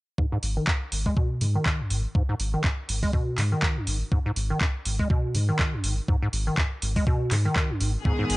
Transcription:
0.18 acid bass G#2, kick
0.32 acid bass G#2
0.43 analog synth bass G#1, open hi-hat
0.57 acid bass D#3
0.67 acid bass F#2, kick, clap
0.92 analog synth bass G#1, open hi-hat
1.06 acid bass G#3, kick
1.17 acid bass B2, kick
1.41 analog synth bass G#2, acid bass D#3, open hi-hat
1.55 acid bass D#3
1.66 kick, clap
1.80 acid bass F#2
1.90 analog synth bass G#1, acid bass G#2, open hi-hat
2.15 acid bass G#2, kick
2.29 acid bass G#2
2.40 analog synth bass G#1, open hi-hat
2.54 acid bass D#3
2.64 acid bass F#2, kick, clap
2.89 analog synth bass G#1, open hi-hat
3.03 acid bass G#3, kick, open hi-hat
3.13 acid bass B2, kick
3.38 analog synth bass G#2, acid bass D#3, clap, open hi-hat
3.52 acid bass D#3
3.63 kick, clap
3.77 acid bass F#2
3.87 analog synth bass G#1, acid bass G#2, open hi-hat
4.12 acid bass G#2, kick
4.26 acid bass G#2
4.36 analog synth bass G#1, open hi-hat
4.50 acid bass D#3
4.61 acid bass F#2, kick, clap
4.85 analog synth bass G#1, open hi-hat
4.99 acid bass G#3, kick
5.10 acid bass B2, kick
5.35 analog synth bass G#2, acid bass D#3, open hi-hat
5.49 acid bass D#3
5.59 kick, clap
5.73 acid bass F#2
5.84 analog synth bass G#1, acid bass G#2, open hi-hat
6.08 acid bass G#2, kick
6.22 acid bass G#2
6.33 analog synth bass G#1, open hi-hat
6.47 acid bass D#3
6.58 acid bass F#2, kick, clap
6.82 analog synth bass G#1, open hi-hat
6.96 acid bass G#3, kick, open hi-hat
7.07 acid bass B2, kick
7.31 analog synth bass G#2, acid bass D#3, clap, open hi-hat
7.45 acid bass D#3
7.56 kick, clap
7.70 acid bass F#2
7.80 analog synth bass G#1, acid bass G#2, open hi-hat
8.05 acid bass G#2, string section D#3 G#3 B3 G#4, kick
8.19 acid bass G#2
8.30 analog synth bass G#1, open hi-hat

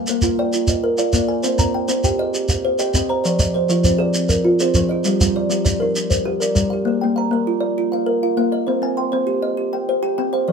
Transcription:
Already playing: kalimba F5 G#5
0.07 kalimba A#3 A#4, shekere
0.22 kalimba F4 F5, shekere
0.39 kalimba D5 G5
0.53 kalimba F4, shekere
0.67 kalimba D#5, shekere
0.84 kalimba A#4
0.98 kalimba F4 D5 F5, shekere
1.13 kalimba A#3 D5, shekere
1.28 kalimba A#4 G#5
1.43 kalimba C4 C5, shekere
1.58 kalimba C4 A#5, shekere
1.74 kalimba G5
1.88 kalimba C4 C5, shekere
2.04 kalimba G4 G5, shekere
2.19 kalimba G#4 D#5
2.34 kalimba G4, shekere
2.49 kalimba F5, shekere
2.65 kalimba C5
2.79 kalimba G4 D#5 G5, shekere
2.94 kalimba C4 D#5, shekere
3.09 kalimba C5 A#5
3.24 kalimba F3 D5, shekere
3.39 kalimba F3 D#5, shekere
3.54 kalimba C5
3.69 kalimba F3 F4, shekere
3.84 kalimba C4 C5, shekere
3.98 kalimba G#4 D5
4.14 kalimba C4, shekere
4.29 kalimba A#4, shekere
4.45 kalimba F4
4.60 kalimba C4 G#4 C5, shekere
4.74 kalimba F3 G#4, shekere
4.89 kalimba F4 D#5
5.04 kalimba G3 G4, shekere
5.21 kalimba G3 F5, shekere
5.36 kalimba D5
5.50 kalimba G3 G4, shekere
5.65 kalimba D4 D5, shekere
5.80 kalimba D#4 A#4
5.96 kalimba D4, shekere
6.10 kalimba C5, shekere
6.25 kalimba G4
6.40 kalimba D4 A#4 D5, shekere
6.55 kalimba G3 A#4, shekere
6.70 kalimba G4 F5
6.85 kalimba A#3 G#4
7.01 kalimba A#3 G5
7.16 kalimba F5 A#5
7.31 kalimba A#3 A#4
7.47 kalimba F4
7.60 kalimba D5
7.78 kalimba F4
7.92 kalimba F5
8.06 kalimba A#4
8.23 kalimba F4 F5
8.37 kalimba A#3 F5
8.52 kalimba A#4 D#5
8.67 kalimba C4 C5
8.82 kalimba C4 G#5
8.97 kalimba G5 C6
9.12 kalimba C4 C5
9.27 kalimba G4
9.42 kalimba D#5
9.57 kalimba G4
9.73 kalimba G5
9.89 kalimba C5
10.03 kalimba G4 G5
10.18 kalimba C4 G5
10.33 kalimba C5 F5
10.48 kalimba F3 D5

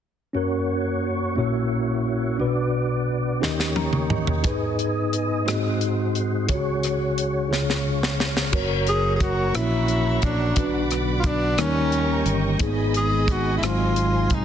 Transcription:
0.33 tine electric piano F#2 C#4 F#4 A#4, tonewheel organ A#3 C#4 F#4 C#5
1.35 tine electric piano A#1 A#2 A#3 C#4 E4 F#4 C#5, tonewheel organ E4
2.38 tine electric piano B1 B2 D4 F#4 B4, tonewheel organ B3 D4 F#4 D5
3.40 tine electric piano D#2 D#3 C#4 D#4 G4 A#4 D#5, tonewheel organ A#3 D#4 G4 C#5, snare
3.60 snare
3.76 tine electric piano A#5, high tom
3.93 mid tom
4.10 tine electric piano D#5, mid tom
4.27 floor tom
4.43 tine electric piano G#2 D#4 G#4 B4, tonewheel organ B3 G#4 D#5, kick, closed hi-hat
4.79 closed hi-hat
5.13 closed hi-hat
5.45 tine electric piano G#2 A#3 D#4 F#4 G#4 D#5, tonewheel organ G#3 D#4 F#4 C5, cross-stick, closed hi-hat
5.51 tine electric piano C4
5.81 closed hi-hat
6.15 closed hi-hat
6.47 tine electric piano C#2 C#3 F4 G#4 C#5, tonewheel organ C#4 C#5, kick, closed hi-hat
6.54 tine electric piano F#4
6.83 cross-stick, closed hi-hat
7.18 closed hi-hat
7.49 tine electric piano C#2 C#3 F4 G#4 C#5, tonewheel organ F4, snare
7.70 snare
8.03 snare
8.20 snare
8.37 snare
8.52 fingered electric bass F#1, tonewheel organ F#3 A#3 A#4 C#5, tine electric piano F#4 A#4 C#5, string section C#5 F#5 A#5 C#6, kick, crash
8.87 tenor saxophone G#4, closed hi-hat
9.16 tenor saxophone G#4
9.20 tenor saxophone F#4, kick, closed hi-hat
9.53 fingered electric bass A#1, tine electric piano A#2 A#3 C#4 E4 F#4 C#5, tonewheel organ E3 F#4, tenor saxophone E4, string section E5 A#5, cross-stick, closed hi-hat
9.88 closed hi-hat
10.22 fingered electric bass A#1, tenor saxophone D4, kick, closed hi-hat
10.55 fingered electric bass B1, tine electric piano B2 C#4 F#4 B4, tonewheel organ D3 F#3 B3, string section D5 B5 D6, kick, closed hi-hat
10.62 tine electric piano D4
10.91 cross-stick, closed hi-hat
11.19 tenor saxophone F4
11.24 tenor saxophone D4, kick, closed hi-hat
11.58 fingered electric bass D#2, tonewheel organ D#3 A#3 C#4 G4, tine electric piano D#3 G3 A#3 C#4 D#4 A#4, tenor saxophone C#4, string section D#5 G5 A#5 C#6, cross-stick, closed hi-hat
11.92 closed hi-hat
12.26 fingered electric bass G1, closed hi-hat
12.58 fingered electric bass G#1, tine electric piano G#2 A#3 D#4 G#4, tonewheel organ G#3 B3 G#4, string section B5 D#6, kick, closed hi-hat
12.63 tine electric piano B3, string section G#5
12.94 tenor saxophone G#4, closed hi-hat
13.28 tenor saxophone F#4, kick, closed hi-hat
13.58 tonewheel organ F#3 C4, tine electric piano G#3 C4, tenor saxophone E4
13.62 fingered electric bass G#1, tine electric piano G#2 F#3 D#4 C5, string section C6, cross-stick, closed hi-hat
13.66 tenor saxophone F4
13.96 closed hi-hat
14.30 fingered electric bass C2, kick, closed hi-hat
14.34 tenor saxophone D#4

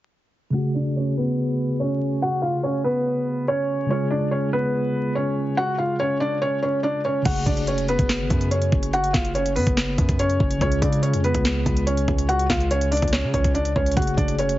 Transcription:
0.50 tine electric piano C#3 A3, felt piano F#5
0.55 felt piano F#4, tine electric piano F#4 G#4
0.75 felt piano D4 D5
0.96 felt piano C#4 C#5
1.17 felt piano B3 B4
1.80 felt piano C#4 C#5
2.22 felt piano F#4 F#5
2.42 felt piano F4 F5
2.63 felt piano C#4 C#5
2.84 felt piano B3 B4
3.48 felt piano C#4 C#5
3.86 tine electric piano C#3 G#3
3.90 felt piano C#4 C#5, tine electric piano F4 G#4
4.10 felt piano D4 D5
4.31 felt piano C#4 C#5
4.53 felt piano B3 B4
5.15 felt piano C#4 C#5
5.57 felt piano F#4 F#5
5.78 felt piano F4 F5
6.00 felt piano C#4 C#5
6.20 felt piano D4 D5
6.42 felt piano C#4 C#5
6.62 felt piano C#4 C#5
6.83 felt piano D4 D5
7.05 felt piano C#4 C#5
7.22 808-style bass F#1, tine electric piano C#3 A3, felt piano F#4 F#5, kick, closed hi-hat, crash
7.27 tine electric piano F#4 G#4
7.36 closed hi-hat
7.46 808-style bass F#1, felt piano D4 D5, kick, closed hi-hat
7.57 closed hi-hat
7.67 felt piano C#4 C#5, closed hi-hat
7.78 closed hi-hat
7.88 felt piano B3 B4, closed hi-hat
7.99 808-style bass F#1, kick, closed hi-hat
8.09 snare, clap, closed hi-hat
8.20 808-style bass G#1
8.30 808-style bass F#2, kick, closed hi-hat
8.41 closed hi-hat
8.51 felt piano C#4 C#5, closed hi-hat
8.62 closed hi-hat
8.72 808-style bass F#1, kick
8.83 closed hi-hat
8.93 felt piano F#4 F#5, closed hi-hat
9.04 closed hi-hat
9.13 808-style bass F#1, felt piano F4 F5, kick, snare, clap, closed hi-hat
9.25 closed hi-hat
9.35 felt piano C#4 C#5, closed hi-hat
9.46 closed hi-hat
9.56 808-style bass F#2, felt piano B3 B4, closed hi-hat, open hi-hat
9.67 808-style bass F#1, kick, closed hi-hat
9.77 snare, clap, closed hi-hat
9.98 808-style bass F#2, kick, closed hi-hat
10.09 kick, closed hi-hat
10.19 felt piano C#4 C#5, closed hi-hat
10.30 closed hi-hat
10.40 808-style bass F#1, kick
10.51 closed hi-hat
10.58 808-style bass C#2, tine electric piano C#3 G#3, felt piano C#5, kick, closed hi-hat
10.63 felt piano C#4, tine electric piano F4 G#4
10.72 closed hi-hat
10.82 808-style bass C#3, felt piano D4 D5, kick, closed hi-hat
10.93 closed hi-hat
11.03 felt piano C#4 C#5, closed hi-hat
11.14 808-style bass F2, closed hi-hat
11.24 felt piano B3 B4, closed hi-hat
11.35 808-style bass C#2, kick, closed hi-hat
11.45 snare, clap, closed hi-hat
11.66 808-style bass C#2, kick, closed hi-hat
11.77 closed hi-hat
11.87 felt piano C#4 C#5, closed hi-hat
11.97 closed hi-hat
12.08 808-style bass C#2, kick
12.18 closed hi-hat
12.29 felt piano F#4 F#5, closed hi-hat
12.39 closed hi-hat
12.50 808-style bass C#2, felt piano F4 F5, kick, snare, clap, closed hi-hat
12.60 closed hi-hat
12.71 felt piano C#4 C#5, closed hi-hat
12.81 closed hi-hat
12.91 felt piano D4 D5, closed hi-hat, open hi-hat
12.97 closed hi-hat
13.02 808-style bass C#2, kick, closed hi-hat
13.08 closed hi-hat
13.13 felt piano C#4 C#5, snare, clap
13.23 808-style bass C#3
13.34 808-style bass C#2, felt piano C#4 C#5, kick, closed hi-hat
13.44 kick, closed hi-hat
13.54 felt piano D4 D5, closed hi-hat
13.65 closed hi-hat
13.76 808-style bass C#2, felt piano C#4 C#5, kick
13.86 closed hi-hat
13.92 tine electric piano C#3, closed hi-hat
13.96 808-style bass F#1, tine electric piano A3 F#4, felt piano F#4 F#5, kick, closed hi-hat
14.00 tine electric piano G#4, closed hi-hat
14.07 closed hi-hat
14.17 808-style bass F#1, felt piano D4 D5, kick, closed hi-hat
14.28 closed hi-hat
14.39 felt piano C#4 C#5, closed hi-hat
14.49 closed hi-hat

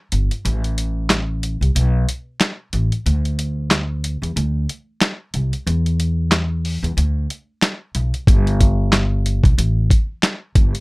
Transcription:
0.12 upright bass G1, closed hi-hat
0.31 closed hi-hat
0.45 upright bass A1, closed hi-hat
0.64 closed hi-hat
0.78 closed hi-hat
1.10 snare, clap, closed hi-hat
1.43 closed hi-hat
1.61 upright bass C2, closed hi-hat
1.75 upright bass B1, closed hi-hat
2.09 closed hi-hat
2.40 snare, clap, closed hi-hat
2.73 upright bass A1, closed hi-hat
2.92 closed hi-hat
3.06 upright bass D2, closed hi-hat
3.25 closed hi-hat
3.39 closed hi-hat
3.71 snare, clap, closed hi-hat
4.04 closed hi-hat
4.22 upright bass E2, closed hi-hat
4.36 upright bass D2, closed hi-hat
4.69 closed hi-hat
5.01 snare, clap, closed hi-hat
5.34 upright bass C2, closed hi-hat
5.53 closed hi-hat
5.67 upright bass E2, closed hi-hat
5.86 closed hi-hat
6.00 closed hi-hat
6.32 snare, clap, closed hi-hat
6.65 open hi-hat
6.83 upright bass E2, closed hi-hat
6.97 upright bass D2, closed hi-hat
7.30 closed hi-hat
7.62 snare, clap, closed hi-hat
7.95 upright bass B1, closed hi-hat
8.14 closed hi-hat
8.27 upright bass G1, kick, closed hi-hat
8.47 closed hi-hat
8.61 kick, closed hi-hat
8.92 snare, clap, closed hi-hat
9.26 closed hi-hat
9.44 upright bass B1, kick, closed hi-hat
9.58 upright bass A1, closed hi-hat
9.90 kick, closed hi-hat
10.23 snare, clap, closed hi-hat
10.55 upright bass G1, kick, closed hi-hat
10.75 closed hi-hat

